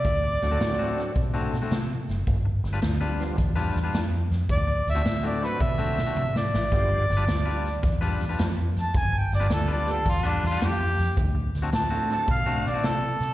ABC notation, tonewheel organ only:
X:1
M:4/4
L:1/8
Q:"Swing" 1/4=108
K:G
V:1 name="Tonewheel organ"
z [F,A,CDF]3 z4 | z3 [=F,G,B,D=F] z4 | z3 [F,A,CDF] z4 | [G,B,D=FG] z6 z |
z3 [G,B,D=FG] z4 | z3 [A,CDFA] z4 |]